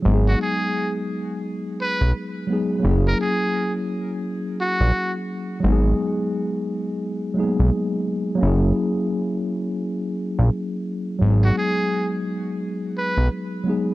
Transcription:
X:1
M:4/4
L:1/16
Q:"Swing 16ths" 1/4=86
K:G#m
V:1 name="Muted trumpet"
z F G3 z4 z B2 z4 | z A G3 z4 z F3 z3 | z16 | z16 |
z F G3 z4 z B2 z4 |]
V:2 name="Tine electric piano"
[F,G,B,DG]12- [F,G,B,DG]2 [F,G,B,DG]2 | [F,A,CEG]16 | [F,G,B,DG]8- [F,G,B,DG]2 [F,G,A,B,DG]6 | [F,A,CEG]16 |
[F,G,B,DG]12- [F,G,B,DG]2 [F,G,B,DG]2 |]
V:3 name="Analog synth bass" clef=bass
G,,,2 z8 z B,,, z4 | F,,,2 z8 z A,,, z4 | G,,,2 z8 z B,,, z4 | F,,,2 z8 z A,,, z4 |
G,,,2 z8 z B,,, z4 |]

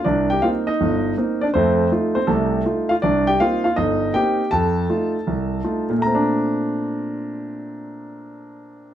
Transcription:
X:1
M:4/4
L:1/8
Q:"Swing" 1/4=161
K:Bb
V:1 name="Grand piano"
[Dd] [Gg] [Ff] [Ee]3 z [Dd] | [Cc]2 z [Cc] [A,A]2 z [Ff] | [Dd] [Gg] [Ff] [Ff] [Ee]2 [Gg]2 | [Aa]6- [Aa] z |
[B,,A,CDb]8- | [B,,A,CDb]8 |]
V:2 name="Grand piano"
C,,2 [B,CE] z G,,,2 [B,CE] z | [F,,A,]2 [A,EF] z [C,,C,]2 [A,EF] z | C,,2 [B,CE] z G,,,2 [B,CE] z | F,,2 [A,EF] z C,,2 [A,EF] z |
z8 | z8 |]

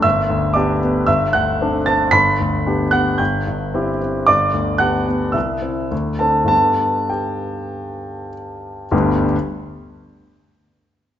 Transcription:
X:1
M:4/4
L:1/8
Q:1/4=110
K:G
V:1 name="Grand piano"
[ee']2 [dd']2 [ee'] [ff']2 [aa'] | [bb']3 [ff'] [gg']3 z | [dd']2 [ff']2 [ee']3 [Aa] | [Aa]2 [Gg]4 z2 |
[G,,,D,,G,B,DG] z6 z |]
V:2 name="Grand piano"
G,,, D,, [B,DG] B, G,,, D,, [CDA] C | G,,, D,, [B,DG] B, G,,, G,, [CEG] C | G,,, D,, [B,DG] B, C,, [CE] D,, [CD] | [G,,G,B,D]8 |
z8 |]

